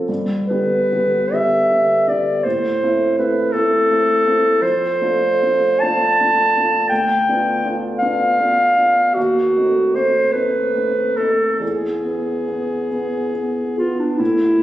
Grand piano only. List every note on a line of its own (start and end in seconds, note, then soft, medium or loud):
0.00 0.11 F3 soft
0.00 0.11 C4 soft
0.00 0.11 A4 soft
0.09 0.48 G2 soft
0.50 0.88 D3 soft
0.50 0.88 B3 soft
0.50 0.88 G4 soft
0.92 1.29 D3 soft
0.92 1.30 B3 soft
0.92 1.30 G4 soft
1.33 1.67 D3 soft
1.33 1.67 B3 soft
1.33 1.68 G4 soft
1.71 2.04 D3 soft
1.71 2.04 B3 soft
1.71 2.04 G4 soft
2.08 2.41 D3 soft
2.08 2.41 B3 soft
2.08 2.42 G4 soft
2.45 2.81 A2 soft
2.83 3.15 A3 soft
2.83 3.15 C4 soft
2.83 3.16 E4 soft
3.18 3.51 A3 soft
3.18 3.51 C4 soft
3.18 3.51 E4 soft
3.54 3.87 A3 soft
3.54 3.87 C4 soft
3.54 3.87 E4 soft
3.91 4.23 A3 soft
3.91 4.23 C4 soft
3.91 4.23 E4 soft
4.26 4.58 A3 soft
4.26 4.59 C4 soft
4.26 4.59 E4 soft
4.62 4.99 F2 medium
5.01 5.38 A3 soft
5.01 5.38 D4 soft
5.01 5.38 F4 soft
5.42 5.78 A3 soft
5.42 5.79 D4 soft
5.42 5.78 F4 soft
5.82 6.16 A3 soft
5.82 6.16 D4 soft
5.82 6.16 F4 soft
6.21 6.52 A3 soft
6.21 6.52 D4 soft
6.21 6.53 F4 soft
6.57 6.88 A3 soft
6.57 6.88 D4 soft
6.57 6.88 F4 soft
6.91 7.25 D2 medium
7.29 7.60 B3 soft
7.29 7.60 D4 soft
7.29 7.61 F4 soft
7.64 7.97 B3 soft
7.64 7.98 D4 soft
7.64 7.98 F4 soft
8.02 8.35 B3 soft
8.02 8.35 D4 soft
8.02 8.36 F4 soft
8.38 8.73 B3 soft
8.38 8.74 D4 soft
8.38 8.73 F4 soft
8.76 9.12 B3 soft
8.76 9.12 D4 soft
8.76 9.12 F4 soft
9.17 9.55 D#2 medium
9.57 9.92 A3 soft
9.57 9.92 C4 soft
9.57 9.93 D#4 soft
9.95 10.31 A3 soft
9.95 10.32 C4 soft
9.95 10.31 D#4 soft
10.35 10.72 A3 soft
10.35 10.72 C4 soft
10.35 10.72 D#4 soft
10.75 11.14 A3 soft
10.75 11.14 C4 soft
10.75 11.14 D#4 soft
11.18 11.57 A3 soft
11.18 11.58 C4 soft
11.18 11.58 D#4 soft
11.60 12.03 E2 soft
12.04 12.45 B3 soft
12.48 12.88 B3 soft
12.91 13.31 B3 soft
13.34 13.74 B3 soft
13.78 14.15 B3 soft
14.20 14.63 A2 medium
14.58 14.63 A3 soft